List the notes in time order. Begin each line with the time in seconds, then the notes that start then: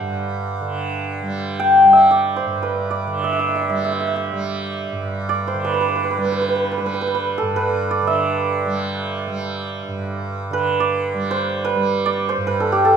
Already playing: D3 G3 E5 F#5
0.00 G2
0.61 D3
1.22 G3
1.60 G5
1.85 G3
1.93 E5
2.11 D5
2.36 C5
2.46 G2
2.63 B4
2.91 D5
3.07 D3
3.24 E5
3.33 E5
3.39 E5
3.48 E5
3.55 E5
3.62 E5
3.69 G3 E5
3.78 E5
3.85 E5
3.92 E5
4.00 E5
4.07 E5
4.16 E5
4.32 G3
4.92 G2
5.29 D5
5.47 C5
5.54 D3
5.65 B4
5.74 B4
5.81 B4
5.88 B4
5.96 B4
6.04 B4
6.10 B4
6.17 G3 B4
6.25 B4
6.32 B4
6.41 B4
6.48 B4
6.56 B4
6.64 B4
6.72 B4
6.78 G3 B4
6.86 B4
6.94 B4
7.01 B4
7.07 B4
7.15 B4
7.38 A4
7.42 G2
7.56 B4
7.91 D5
8.02 D3
8.07 E5
8.65 G3
9.27 G3
9.88 G2
10.50 D3 B4
10.80 D5
11.14 G3
11.31 C5
11.65 B4
11.75 G3
12.06 D5
12.29 C5
12.38 G2
12.47 B4
12.60 A4
12.72 G4
12.85 A4